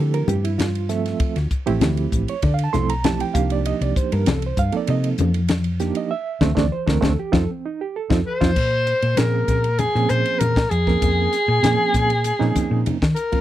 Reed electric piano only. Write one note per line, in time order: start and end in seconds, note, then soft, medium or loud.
0.00 0.48 F3 medium
0.00 0.49 A3 medium
0.00 0.48 C4 medium
0.00 0.43 E4 medium
0.00 0.27 G4 medium
0.00 0.14 A4 medium
0.14 0.28 A#4 medium
0.28 0.44 G4 medium
0.44 0.59 E4 medium
0.58 1.47 F4 medium
0.89 1.37 F3 medium
0.89 1.37 A3 medium
0.89 1.37 C4 medium
0.89 1.37 A4 medium
0.89 1.37 E5 medium
1.66 2.32 F3 medium
1.66 2.33 A3 medium
1.66 2.32 C4 medium
1.66 2.32 E4 medium
1.66 2.32 G4 loud
2.29 2.43 C#5 medium
2.44 2.53 D5 medium
2.54 2.63 F5 medium
2.64 2.73 A5 medium
2.73 2.92 F3 medium
2.73 2.93 A3 medium
2.73 2.93 C4 medium
2.73 2.93 E4 medium
2.73 2.93 A4 medium
2.73 2.89 C6 loud
2.90 3.04 A#5 medium
3.05 3.33 F3 medium
3.05 3.35 A3 medium
3.05 3.35 C4 medium
3.05 3.35 E4 medium
3.05 3.34 G4 medium
3.05 3.20 A5 medium
3.21 3.35 G5 medium
3.34 4.33 F3 medium
3.34 4.33 A#3 medium
3.34 4.33 D4 medium
3.34 4.33 D#4 medium
3.34 4.33 G4 medium
3.34 3.50 F5 medium
3.52 3.66 D5 medium
3.67 3.81 D#5 loud
3.82 3.96 D5 medium
3.97 4.12 C5 medium
4.13 4.27 A#4 medium
4.29 4.43 A4 medium
4.46 4.59 C5 medium
4.59 4.74 F5 loud
4.72 5.38 F3 medium
4.72 5.39 A#3 medium
4.72 5.39 C4 medium
4.72 5.39 D#4 medium
4.72 5.38 A4 medium
4.77 4.89 D5 medium
4.90 5.08 D#5 medium
5.80 6.11 F3 medium
5.80 6.11 A#3 medium
5.80 6.11 D4 medium
5.80 6.11 D#4 medium
5.80 6.11 G4 medium
5.97 6.11 D#5 medium
6.11 6.54 E5 loud
6.41 6.51 A3 loud
6.41 6.51 C4 medium
6.41 6.51 D4 medium
6.55 6.65 A3 medium
6.55 6.65 C4 medium
6.55 6.66 D4 medium
6.55 6.72 D5 medium
6.72 6.88 C5 medium
6.86 6.97 A3 loud
6.86 6.97 C4 medium
6.86 6.96 D4 medium
6.86 7.03 A#4 medium
7.01 7.12 A3 loud
7.01 7.12 C4 medium
7.01 7.12 D4 medium
7.01 7.18 A4 medium
7.19 7.33 G4 medium
7.32 7.43 C4 loud
7.32 7.43 D#4 medium
7.32 7.43 F4 loud
7.32 7.49 A4 medium
7.51 7.65 C4 medium
7.65 7.80 D#4 medium
7.81 7.95 G4 medium
7.96 8.39 A4 medium
8.10 8.20 C4 medium
8.10 8.19 D#4 medium
8.10 8.20 F4 medium
8.41 8.50 C4 loud
8.41 8.50 D#4 medium
8.41 8.50 F4 loud
9.17 9.65 F3 medium
9.17 9.65 A#3 medium
9.17 9.65 C4 medium
9.17 9.65 C#4 medium
9.17 9.65 G#4 medium
9.95 10.52 F3 medium
9.95 10.52 A#3 medium
9.95 10.52 C4 medium
9.95 10.52 C#4 medium
9.95 10.52 G#4 medium
10.87 11.34 F3 medium
10.87 11.34 A#3 medium
10.87 11.34 C4 medium
10.87 11.34 C#4 medium
10.87 11.34 A#4 medium
11.63 12.11 F3 medium
11.63 12.11 A#3 medium
11.63 12.11 C4 medium
11.63 12.11 C#4 medium
11.63 12.11 G#4 medium
12.39 12.97 F3 medium
12.39 12.97 A#3 medium
12.39 12.97 C4 medium
12.39 12.97 C#4 medium
12.39 12.97 D#4 loud
13.32 13.41 F3 medium
13.32 13.41 A#3 medium
13.32 13.41 C4 medium
13.32 13.41 C#4 medium
13.32 13.41 F4 medium